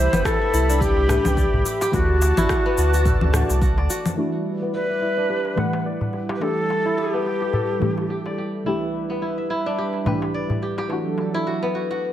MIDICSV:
0, 0, Header, 1, 8, 480
1, 0, Start_track
1, 0, Key_signature, 1, "minor"
1, 0, Tempo, 560748
1, 1656, Time_signature, 4, 2, 24, 8
1, 10382, End_track
2, 0, Start_track
2, 0, Title_t, "Analog synth pad"
2, 0, Program_c, 0, 89
2, 0, Note_on_c, 0, 67, 80
2, 0, Note_on_c, 0, 76, 72
2, 0, Note_on_c, 0, 83, 92
2, 1620, Note_off_c, 0, 67, 0
2, 1621, Note_off_c, 0, 76, 0
2, 1638, Note_off_c, 0, 83, 0
2, 1655, Note_on_c, 0, 81, 92
2, 1656, Note_on_c, 0, 66, 83
2, 1659, Note_on_c, 0, 74, 69
2, 3556, Note_off_c, 0, 81, 0
2, 3557, Note_off_c, 0, 66, 0
2, 3558, Note_off_c, 0, 74, 0
2, 3579, Note_on_c, 0, 74, 83
2, 3580, Note_on_c, 0, 64, 66
2, 3581, Note_on_c, 0, 71, 64
2, 3583, Note_on_c, 0, 55, 77
2, 5478, Note_off_c, 0, 74, 0
2, 5479, Note_off_c, 0, 71, 0
2, 5501, Note_on_c, 0, 69, 69
2, 7384, Note_off_c, 0, 64, 0
2, 7399, Note_off_c, 0, 69, 0
2, 7420, Note_on_c, 0, 71, 64
2, 7424, Note_on_c, 0, 64, 67
2, 9305, Note_off_c, 0, 55, 0
2, 9319, Note_off_c, 0, 71, 0
2, 9321, Note_off_c, 0, 64, 0
2, 9334, Note_on_c, 0, 62, 68
2, 9336, Note_on_c, 0, 69, 66
2, 9337, Note_on_c, 0, 54, 77
2, 10285, Note_off_c, 0, 62, 0
2, 10286, Note_off_c, 0, 54, 0
2, 10286, Note_off_c, 0, 69, 0
2, 10382, End_track
3, 0, Start_track
3, 0, Title_t, "Native American-style wooden flute"
3, 0, Program_c, 1, 77
3, 0, Note_on_c, 1, 72, 105
3, 218, Note_on_c, 1, 69, 106
3, 231, Note_off_c, 1, 72, 0
3, 691, Note_on_c, 1, 67, 105
3, 704, Note_off_c, 1, 69, 0
3, 1651, Note_off_c, 1, 67, 0
3, 1656, Note_on_c, 1, 66, 103
3, 3061, Note_off_c, 1, 66, 0
3, 4058, Note_on_c, 1, 71, 94
3, 4983, Note_off_c, 1, 71, 0
3, 5441, Note_on_c, 1, 71, 76
3, 5495, Note_on_c, 1, 69, 103
3, 5507, Note_off_c, 1, 71, 0
3, 5973, Note_on_c, 1, 67, 89
3, 5986, Note_off_c, 1, 69, 0
3, 7174, Note_off_c, 1, 67, 0
3, 10382, End_track
4, 0, Start_track
4, 0, Title_t, "Kora"
4, 0, Program_c, 2, 46
4, 0, Note_on_c, 2, 64, 94
4, 0, Note_on_c, 2, 67, 77
4, 0, Note_on_c, 2, 74, 75
4, 113, Note_on_c, 2, 59, 77
4, 215, Note_off_c, 2, 64, 0
4, 218, Note_on_c, 2, 64, 75
4, 345, Note_off_c, 2, 74, 0
4, 355, Note_on_c, 2, 76, 67
4, 454, Note_off_c, 2, 64, 0
4, 457, Note_on_c, 2, 64, 93
4, 594, Note_on_c, 2, 62, 100
4, 695, Note_off_c, 2, 67, 0
4, 698, Note_on_c, 2, 67, 102
4, 936, Note_on_c, 2, 71, 78
4, 1178, Note_on_c, 2, 74, 88
4, 1240, Note_off_c, 2, 76, 0
4, 1415, Note_off_c, 2, 67, 0
4, 1419, Note_on_c, 2, 67, 73
4, 1553, Note_off_c, 2, 67, 0
4, 1556, Note_on_c, 2, 67, 104
4, 1708, Note_off_c, 2, 59, 0
4, 1799, Note_off_c, 2, 64, 0
4, 1988, Note_off_c, 2, 71, 0
4, 2032, Note_off_c, 2, 62, 0
4, 2034, Note_on_c, 2, 64, 105
4, 2127, Note_off_c, 2, 74, 0
4, 2140, Note_on_c, 2, 66, 79
4, 2192, Note_off_c, 2, 67, 0
4, 2274, Note_on_c, 2, 59, 95
4, 2378, Note_off_c, 2, 66, 0
4, 2381, Note_on_c, 2, 66, 75
4, 2514, Note_off_c, 2, 66, 0
4, 2517, Note_on_c, 2, 66, 96
4, 2622, Note_on_c, 2, 69, 87
4, 3096, Note_off_c, 2, 66, 0
4, 3099, Note_on_c, 2, 66, 87
4, 3233, Note_on_c, 2, 74, 74
4, 3335, Note_off_c, 2, 66, 0
4, 3339, Note_on_c, 2, 66, 78
4, 3376, Note_off_c, 2, 64, 0
4, 3577, Note_on_c, 2, 64, 76
4, 3750, Note_off_c, 2, 69, 0
4, 3869, Note_off_c, 2, 59, 0
4, 3952, Note_on_c, 2, 59, 67
4, 4052, Note_off_c, 2, 64, 0
4, 4056, Note_on_c, 2, 64, 64
4, 4182, Note_off_c, 2, 74, 0
4, 4191, Note_on_c, 2, 76, 60
4, 4290, Note_off_c, 2, 64, 0
4, 4293, Note_on_c, 2, 64, 80
4, 4427, Note_on_c, 2, 62, 80
4, 4532, Note_on_c, 2, 67, 80
4, 4583, Note_off_c, 2, 66, 0
4, 4774, Note_on_c, 2, 71, 63
4, 5014, Note_on_c, 2, 74, 71
4, 5076, Note_off_c, 2, 76, 0
4, 5247, Note_off_c, 2, 67, 0
4, 5251, Note_on_c, 2, 67, 64
4, 5382, Note_off_c, 2, 67, 0
4, 5386, Note_on_c, 2, 67, 80
4, 5547, Note_off_c, 2, 59, 0
4, 5635, Note_off_c, 2, 64, 0
4, 5826, Note_off_c, 2, 71, 0
4, 5865, Note_off_c, 2, 62, 0
4, 5868, Note_on_c, 2, 64, 81
4, 5962, Note_off_c, 2, 74, 0
4, 5969, Note_off_c, 2, 67, 0
4, 5973, Note_on_c, 2, 67, 65
4, 6109, Note_on_c, 2, 59, 80
4, 6210, Note_off_c, 2, 67, 0
4, 6214, Note_on_c, 2, 67, 61
4, 6345, Note_off_c, 2, 67, 0
4, 6349, Note_on_c, 2, 67, 81
4, 6452, Note_on_c, 2, 69, 65
4, 6930, Note_off_c, 2, 67, 0
4, 6933, Note_on_c, 2, 67, 72
4, 7071, Note_on_c, 2, 74, 66
4, 7171, Note_off_c, 2, 67, 0
4, 7174, Note_on_c, 2, 67, 67
4, 7210, Note_off_c, 2, 64, 0
4, 7414, Note_on_c, 2, 64, 85
4, 7580, Note_off_c, 2, 69, 0
4, 7704, Note_off_c, 2, 59, 0
4, 7787, Note_on_c, 2, 59, 62
4, 7888, Note_off_c, 2, 64, 0
4, 7892, Note_on_c, 2, 64, 64
4, 8019, Note_off_c, 2, 74, 0
4, 8027, Note_on_c, 2, 76, 59
4, 8129, Note_off_c, 2, 64, 0
4, 8133, Note_on_c, 2, 64, 88
4, 8271, Note_on_c, 2, 62, 88
4, 8372, Note_off_c, 2, 67, 0
4, 8375, Note_on_c, 2, 67, 87
4, 8618, Note_on_c, 2, 71, 65
4, 8854, Note_on_c, 2, 74, 76
4, 8912, Note_off_c, 2, 76, 0
4, 9092, Note_off_c, 2, 67, 0
4, 9095, Note_on_c, 2, 67, 64
4, 9226, Note_off_c, 2, 67, 0
4, 9230, Note_on_c, 2, 67, 88
4, 9382, Note_off_c, 2, 59, 0
4, 9474, Note_off_c, 2, 64, 0
4, 9670, Note_off_c, 2, 71, 0
4, 9709, Note_off_c, 2, 62, 0
4, 9710, Note_on_c, 2, 64, 92
4, 9802, Note_off_c, 2, 74, 0
4, 9816, Note_on_c, 2, 66, 69
4, 9867, Note_off_c, 2, 67, 0
4, 9951, Note_on_c, 2, 59, 81
4, 10053, Note_off_c, 2, 66, 0
4, 10057, Note_on_c, 2, 66, 65
4, 10188, Note_off_c, 2, 66, 0
4, 10191, Note_on_c, 2, 66, 89
4, 10382, Note_off_c, 2, 59, 0
4, 10382, Note_off_c, 2, 64, 0
4, 10382, Note_off_c, 2, 66, 0
4, 10382, End_track
5, 0, Start_track
5, 0, Title_t, "Synth stab"
5, 0, Program_c, 3, 62
5, 0, Control_c, 3, 64, 127
5, 0, Note_on_c, 3, 52, 96
5, 0, Note_on_c, 3, 57, 91
5, 0, Note_on_c, 3, 62, 93
5, 0, Note_on_c, 3, 67, 107
5, 900, Note_off_c, 3, 52, 0
5, 906, Note_off_c, 3, 57, 0
5, 911, Note_off_c, 3, 62, 0
5, 918, Note_off_c, 3, 67, 0
5, 918, Note_on_c, 3, 52, 96
5, 929, Note_on_c, 3, 57, 87
5, 940, Note_on_c, 3, 62, 77
5, 951, Note_on_c, 3, 67, 105
5, 1621, Note_off_c, 3, 52, 0
5, 1627, Note_off_c, 3, 57, 0
5, 1632, Note_off_c, 3, 62, 0
5, 1637, Note_on_c, 3, 52, 92
5, 1638, Note_off_c, 3, 67, 0
5, 1647, Note_on_c, 3, 57, 88
5, 1660, Note_on_c, 3, 62, 85
5, 1667, Control_c, 3, 64, 0
5, 1670, Note_on_c, 3, 66, 108
5, 1833, Control_c, 3, 64, 127
5, 2821, Note_off_c, 3, 52, 0
5, 2826, Note_off_c, 3, 57, 0
5, 2833, Note_off_c, 3, 62, 0
5, 2837, Note_on_c, 3, 52, 91
5, 2838, Note_off_c, 3, 66, 0
5, 2849, Note_on_c, 3, 57, 84
5, 2862, Note_on_c, 3, 62, 85
5, 2873, Note_on_c, 3, 66, 97
5, 3541, Note_off_c, 3, 52, 0
5, 3547, Note_off_c, 3, 57, 0
5, 3554, Note_off_c, 3, 62, 0
5, 3556, Note_on_c, 3, 52, 89
5, 3559, Note_off_c, 3, 66, 0
5, 3568, Note_on_c, 3, 57, 79
5, 3580, Note_on_c, 3, 62, 81
5, 3586, Control_c, 3, 64, 0
5, 3591, Note_on_c, 3, 66, 89
5, 3748, Control_c, 3, 64, 127
5, 4741, Note_off_c, 3, 52, 0
5, 4746, Note_off_c, 3, 57, 0
5, 4752, Note_off_c, 3, 62, 0
5, 4754, Note_on_c, 3, 52, 83
5, 4758, Note_off_c, 3, 66, 0
5, 4764, Note_on_c, 3, 57, 77
5, 4776, Note_on_c, 3, 62, 72
5, 4786, Note_on_c, 3, 78, 90
5, 5459, Note_off_c, 3, 52, 0
5, 5465, Note_off_c, 3, 57, 0
5, 5470, Note_off_c, 3, 62, 0
5, 5473, Note_on_c, 3, 52, 86
5, 5476, Note_off_c, 3, 78, 0
5, 5483, Note_on_c, 3, 57, 82
5, 5495, Note_on_c, 3, 62, 82
5, 5506, Note_on_c, 3, 67, 97
5, 5507, Control_c, 3, 64, 0
5, 5652, Control_c, 3, 64, 127
5, 6659, Note_off_c, 3, 52, 0
5, 6664, Note_off_c, 3, 57, 0
5, 6670, Note_off_c, 3, 62, 0
5, 6670, Note_on_c, 3, 52, 85
5, 6675, Note_off_c, 3, 67, 0
5, 6683, Note_on_c, 3, 57, 80
5, 6693, Note_on_c, 3, 62, 77
5, 6704, Note_on_c, 3, 67, 89
5, 7378, Note_off_c, 3, 52, 0
5, 7384, Note_off_c, 3, 57, 0
5, 7389, Note_off_c, 3, 62, 0
5, 7395, Note_off_c, 3, 67, 0
5, 7395, Note_on_c, 3, 36, 90
5, 7403, Note_on_c, 3, 52, 79
5, 7413, Note_on_c, 3, 57, 79
5, 7421, Note_on_c, 3, 62, 83
5, 7428, Control_c, 3, 64, 0
5, 7430, Note_on_c, 3, 67, 99
5, 7572, Control_c, 3, 64, 127
5, 8580, Note_off_c, 3, 36, 0
5, 8584, Note_off_c, 3, 52, 0
5, 8589, Note_off_c, 3, 57, 0
5, 8593, Note_off_c, 3, 62, 0
5, 8593, Note_on_c, 3, 36, 79
5, 8598, Note_off_c, 3, 67, 0
5, 8604, Note_on_c, 3, 52, 79
5, 8610, Note_on_c, 3, 57, 76
5, 8619, Note_on_c, 3, 62, 76
5, 8628, Note_on_c, 3, 67, 91
5, 9299, Note_off_c, 3, 36, 0
5, 9304, Note_off_c, 3, 52, 0
5, 9308, Note_off_c, 3, 57, 0
5, 9312, Note_off_c, 3, 62, 0
5, 9317, Note_off_c, 3, 67, 0
5, 9318, Note_on_c, 3, 52, 92
5, 9328, Note_on_c, 3, 57, 79
5, 9340, Note_on_c, 3, 62, 82
5, 9347, Control_c, 3, 64, 0
5, 9350, Note_on_c, 3, 66, 98
5, 9483, Control_c, 3, 64, 127
5, 10286, Note_off_c, 3, 52, 0
5, 10292, Note_off_c, 3, 57, 0
5, 10298, Note_off_c, 3, 62, 0
5, 10303, Note_off_c, 3, 66, 0
5, 10382, End_track
6, 0, Start_track
6, 0, Title_t, "Sub bass"
6, 0, Program_c, 4, 38
6, 110, Note_on_c, 4, 31, 98
6, 195, Note_off_c, 4, 31, 0
6, 456, Note_on_c, 4, 36, 80
6, 790, Note_off_c, 4, 36, 0
6, 830, Note_on_c, 4, 36, 108
6, 1019, Note_off_c, 4, 36, 0
6, 1070, Note_on_c, 4, 36, 83
6, 1259, Note_off_c, 4, 36, 0
6, 1311, Note_on_c, 4, 36, 98
6, 1396, Note_off_c, 4, 36, 0
6, 1653, Note_on_c, 4, 38, 102
6, 1989, Note_off_c, 4, 38, 0
6, 2035, Note_on_c, 4, 33, 90
6, 2118, Note_off_c, 4, 33, 0
6, 2377, Note_on_c, 4, 38, 76
6, 2710, Note_off_c, 4, 38, 0
6, 2750, Note_on_c, 4, 38, 102
6, 2939, Note_off_c, 4, 38, 0
6, 2994, Note_on_c, 4, 36, 94
6, 3233, Note_on_c, 4, 38, 83
6, 3246, Note_off_c, 4, 36, 0
6, 3317, Note_off_c, 4, 38, 0
6, 10382, End_track
7, 0, Start_track
7, 0, Title_t, "Darbuka"
7, 829, Note_on_c, 9, 62, 52
7, 914, Note_off_c, 9, 62, 0
7, 933, Note_on_c, 9, 63, 66
7, 938, Note_on_c, 9, 64, 88
7, 1018, Note_off_c, 9, 63, 0
7, 1024, Note_off_c, 9, 64, 0
7, 1068, Note_on_c, 9, 63, 70
7, 1153, Note_off_c, 9, 63, 0
7, 1314, Note_on_c, 9, 64, 81
7, 1399, Note_off_c, 9, 64, 0
7, 1420, Note_on_c, 9, 62, 54
7, 1506, Note_off_c, 9, 62, 0
7, 1552, Note_on_c, 9, 63, 74
7, 1637, Note_off_c, 9, 63, 0
7, 1658, Note_on_c, 9, 63, 62
7, 1744, Note_off_c, 9, 63, 0
7, 1897, Note_on_c, 9, 62, 40
7, 1899, Note_on_c, 9, 63, 74
7, 1983, Note_off_c, 9, 62, 0
7, 1984, Note_off_c, 9, 63, 0
7, 2376, Note_on_c, 9, 63, 41
7, 2462, Note_off_c, 9, 63, 0
7, 2614, Note_on_c, 9, 64, 84
7, 2700, Note_off_c, 9, 64, 0
7, 2849, Note_on_c, 9, 64, 92
7, 2853, Note_on_c, 9, 62, 78
7, 2934, Note_off_c, 9, 64, 0
7, 2939, Note_off_c, 9, 62, 0
7, 2991, Note_on_c, 9, 62, 60
7, 3076, Note_off_c, 9, 62, 0
7, 3230, Note_on_c, 9, 62, 38
7, 3233, Note_on_c, 9, 63, 57
7, 3315, Note_off_c, 9, 62, 0
7, 3319, Note_off_c, 9, 63, 0
7, 4665, Note_on_c, 9, 62, 44
7, 4751, Note_off_c, 9, 62, 0
7, 4773, Note_on_c, 9, 63, 59
7, 4773, Note_on_c, 9, 64, 76
7, 4858, Note_off_c, 9, 63, 0
7, 4859, Note_off_c, 9, 64, 0
7, 4908, Note_on_c, 9, 63, 62
7, 4994, Note_off_c, 9, 63, 0
7, 5144, Note_on_c, 9, 64, 72
7, 5230, Note_off_c, 9, 64, 0
7, 5248, Note_on_c, 9, 62, 44
7, 5333, Note_off_c, 9, 62, 0
7, 5387, Note_on_c, 9, 63, 72
7, 5472, Note_off_c, 9, 63, 0
7, 5491, Note_on_c, 9, 63, 62
7, 5576, Note_off_c, 9, 63, 0
7, 5733, Note_on_c, 9, 62, 34
7, 5738, Note_on_c, 9, 63, 54
7, 5818, Note_off_c, 9, 62, 0
7, 5823, Note_off_c, 9, 63, 0
7, 6215, Note_on_c, 9, 63, 31
7, 6301, Note_off_c, 9, 63, 0
7, 6447, Note_on_c, 9, 64, 83
7, 6533, Note_off_c, 9, 64, 0
7, 6691, Note_on_c, 9, 62, 59
7, 6691, Note_on_c, 9, 64, 88
7, 6777, Note_off_c, 9, 62, 0
7, 6777, Note_off_c, 9, 64, 0
7, 6827, Note_on_c, 9, 62, 55
7, 6913, Note_off_c, 9, 62, 0
7, 7068, Note_on_c, 9, 63, 48
7, 7153, Note_off_c, 9, 63, 0
7, 8501, Note_on_c, 9, 62, 43
7, 8586, Note_off_c, 9, 62, 0
7, 8612, Note_on_c, 9, 64, 90
7, 8613, Note_on_c, 9, 63, 66
7, 8698, Note_off_c, 9, 64, 0
7, 8699, Note_off_c, 9, 63, 0
7, 8749, Note_on_c, 9, 63, 66
7, 8835, Note_off_c, 9, 63, 0
7, 8986, Note_on_c, 9, 64, 85
7, 9071, Note_off_c, 9, 64, 0
7, 9091, Note_on_c, 9, 62, 42
7, 9177, Note_off_c, 9, 62, 0
7, 9226, Note_on_c, 9, 63, 66
7, 9312, Note_off_c, 9, 63, 0
7, 9328, Note_on_c, 9, 63, 53
7, 9414, Note_off_c, 9, 63, 0
7, 9568, Note_on_c, 9, 63, 50
7, 9574, Note_on_c, 9, 62, 33
7, 9653, Note_off_c, 9, 63, 0
7, 9660, Note_off_c, 9, 62, 0
7, 10050, Note_on_c, 9, 63, 31
7, 10136, Note_off_c, 9, 63, 0
7, 10382, End_track
8, 0, Start_track
8, 0, Title_t, "Drums"
8, 112, Note_on_c, 9, 64, 84
8, 115, Note_on_c, 9, 82, 42
8, 197, Note_off_c, 9, 64, 0
8, 201, Note_off_c, 9, 82, 0
8, 213, Note_on_c, 9, 36, 97
8, 217, Note_on_c, 9, 37, 79
8, 221, Note_on_c, 9, 82, 32
8, 299, Note_off_c, 9, 36, 0
8, 303, Note_off_c, 9, 37, 0
8, 306, Note_off_c, 9, 82, 0
8, 462, Note_on_c, 9, 82, 75
8, 547, Note_off_c, 9, 82, 0
8, 598, Note_on_c, 9, 82, 42
8, 684, Note_off_c, 9, 82, 0
8, 693, Note_on_c, 9, 36, 95
8, 701, Note_on_c, 9, 82, 35
8, 779, Note_off_c, 9, 36, 0
8, 786, Note_off_c, 9, 82, 0
8, 936, Note_on_c, 9, 37, 76
8, 939, Note_on_c, 9, 82, 73
8, 1021, Note_off_c, 9, 37, 0
8, 1025, Note_off_c, 9, 82, 0
8, 1071, Note_on_c, 9, 64, 79
8, 1074, Note_on_c, 9, 82, 44
8, 1156, Note_off_c, 9, 64, 0
8, 1160, Note_off_c, 9, 82, 0
8, 1174, Note_on_c, 9, 36, 101
8, 1178, Note_on_c, 9, 82, 33
8, 1259, Note_off_c, 9, 36, 0
8, 1264, Note_off_c, 9, 82, 0
8, 1418, Note_on_c, 9, 82, 80
8, 1503, Note_off_c, 9, 82, 0
8, 1553, Note_on_c, 9, 82, 40
8, 1639, Note_off_c, 9, 82, 0
8, 1654, Note_on_c, 9, 36, 101
8, 1658, Note_on_c, 9, 82, 32
8, 1739, Note_off_c, 9, 36, 0
8, 1744, Note_off_c, 9, 82, 0
8, 1897, Note_on_c, 9, 82, 78
8, 1982, Note_off_c, 9, 82, 0
8, 2031, Note_on_c, 9, 64, 86
8, 2034, Note_on_c, 9, 82, 46
8, 2117, Note_off_c, 9, 64, 0
8, 2120, Note_off_c, 9, 82, 0
8, 2134, Note_on_c, 9, 37, 81
8, 2135, Note_on_c, 9, 36, 99
8, 2137, Note_on_c, 9, 82, 31
8, 2220, Note_off_c, 9, 36, 0
8, 2220, Note_off_c, 9, 37, 0
8, 2223, Note_off_c, 9, 82, 0
8, 2377, Note_on_c, 9, 82, 76
8, 2463, Note_off_c, 9, 82, 0
8, 2514, Note_on_c, 9, 82, 44
8, 2599, Note_off_c, 9, 82, 0
8, 2615, Note_on_c, 9, 36, 99
8, 2617, Note_on_c, 9, 82, 33
8, 2701, Note_off_c, 9, 36, 0
8, 2703, Note_off_c, 9, 82, 0
8, 2750, Note_on_c, 9, 64, 65
8, 2836, Note_off_c, 9, 64, 0
8, 2856, Note_on_c, 9, 37, 79
8, 2859, Note_on_c, 9, 82, 70
8, 2942, Note_off_c, 9, 37, 0
8, 2945, Note_off_c, 9, 82, 0
8, 2994, Note_on_c, 9, 82, 45
8, 3079, Note_off_c, 9, 82, 0
8, 3095, Note_on_c, 9, 36, 109
8, 3098, Note_on_c, 9, 82, 33
8, 3181, Note_off_c, 9, 36, 0
8, 3183, Note_off_c, 9, 82, 0
8, 3339, Note_on_c, 9, 82, 78
8, 3424, Note_off_c, 9, 82, 0
8, 3472, Note_on_c, 9, 64, 83
8, 3475, Note_on_c, 9, 82, 42
8, 3557, Note_off_c, 9, 64, 0
8, 3561, Note_off_c, 9, 82, 0
8, 10382, End_track
0, 0, End_of_file